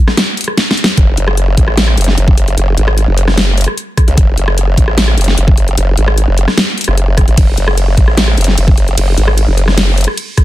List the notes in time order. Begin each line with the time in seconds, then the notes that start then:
0.08 cross-stick, snare
0.17 snare, closed hi-hat
0.37 closed hi-hat
0.41 closed hi-hat
0.44 cross-stick, closed hi-hat
0.57 snare, closed hi-hat
0.71 snare
0.77 closed hi-hat
0.84 snare, closed hi-hat
0.97 F#1, kick, closed hi-hat
1.17 F#1, closed hi-hat
1.28 cross-stick
1.37 closed hi-hat
1.57 A1, kick, closed hi-hat
1.68 cross-stick
1.77 snare, closed hi-hat
1.88 cross-stick
1.97 F#1, closed hi-hat
2.01 closed hi-hat
2.04 snare, closed hi-hat
2.17 F#1, closed hi-hat
2.28 kick
2.38 closed hi-hat
2.48 closed hi-hat
2.57 F#1, closed hi-hat
2.77 G#1, closed hi-hat
2.88 cross-stick
2.98 closed hi-hat
3.08 F#1
3.18 closed hi-hat
3.28 cross-stick, snare
3.38 snare, closed hi-hat
3.57 closed hi-hat
3.61 closed hi-hat
3.64 cross-stick, closed hi-hat
3.78 closed hi-hat
3.97 kick, cross-stick, closed hi-hat
4.08 C#2, closed hi-hat
4.17 F#1, kick, closed hi-hat
4.38 F#1, closed hi-hat
4.48 cross-stick
4.58 closed hi-hat
4.77 A1, kick, closed hi-hat
4.88 cross-stick
4.98 snare, closed hi-hat
5.08 cross-stick
5.17 F#1, closed hi-hat
5.21 closed hi-hat
5.24 snare, closed hi-hat
5.37 F#1, closed hi-hat
5.48 kick
5.57 closed hi-hat
5.68 closed hi-hat
5.77 F#1, closed hi-hat
5.97 G#1, closed hi-hat
6.08 cross-stick
6.18 closed hi-hat
6.28 F#1
6.38 closed hi-hat
6.48 cross-stick, snare
6.58 snare, closed hi-hat
6.78 closed hi-hat
6.81 closed hi-hat
6.84 F#1, cross-stick, closed hi-hat
6.98 closed hi-hat
7.17 kick, cross-stick, closed hi-hat
7.28 A1, closed hi-hat
7.38 F#1, kick, closed hi-hat, ride
7.57 F#1, closed hi-hat
7.68 cross-stick
7.78 closed hi-hat, ride
7.97 A1, kick, closed hi-hat
8.08 cross-stick
8.17 snare, closed hi-hat, ride
8.28 cross-stick
8.38 F#1, closed hi-hat
8.41 closed hi-hat
8.44 snare, closed hi-hat
8.58 F#1, closed hi-hat, ride
8.68 kick
8.78 closed hi-hat
8.88 closed hi-hat
8.97 F#1, closed hi-hat, ride
9.17 G#1, closed hi-hat
9.28 cross-stick
9.38 closed hi-hat, ride
9.48 F#1
9.58 closed hi-hat
9.68 cross-stick, snare
9.78 snare, closed hi-hat, ride
9.98 closed hi-hat
10.01 closed hi-hat
10.04 cross-stick, closed hi-hat
10.17 closed hi-hat, ride
10.37 kick, cross-stick, closed hi-hat